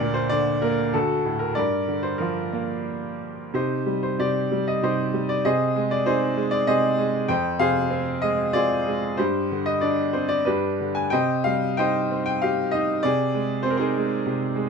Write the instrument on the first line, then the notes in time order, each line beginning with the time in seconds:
upright piano
Already playing: D2 A#4 D5
0.01 A#2
0.14 C5
0.29 D3 D5
0.62 A#3 A#4
0.94 D2 F#4 A4
1.25 A2
1.39 A#4
1.55 G2 A#4 D5
1.88 D3
2.03 C5
2.18 F3 F4 A#4
2.53 A#3
3.54 C3 D#4 G4 C5
3.86 G3
4.03 C5
4.19 C3 G4 D5
4.52 G3
4.68 D#5
4.83 C3 D#4 G4 C5
5.14 G3
5.29 D5
5.45 C3 G#4 C5 D#5
5.76 G#3
5.91 D5
6.06 C4 D#4 G#4 C5
6.37 G#3
6.51 D5
6.67 C3 G#4 C5 D#5
6.98 G#3
7.28 F2 C5 G5
7.59 C3 G#4 C5 F5
7.91 C4
8.22 G#3 D#5
8.53 C4 F4 G#4 D5
8.87 G#3
9.17 G2 G4 C5
9.51 D3
9.66 D#5
9.81 D4 D5
10.13 C4 C5
10.29 D5
10.45 G2 D4 G4 B4
10.80 D3
10.95 G#5
11.10 C3 C5 D#5 G5
11.44 G3 F5
11.77 D#4 C5 D#5 G5
12.11 C4
12.26 G5
12.42 G4 F5
12.71 D#4 D#5
13.03 C3 G#4 D5
13.35 G#3
13.63 C4 C5
13.70 A#4
13.77 D#4 G#4 C5
13.97 G#3
14.26 C3
14.56 G#3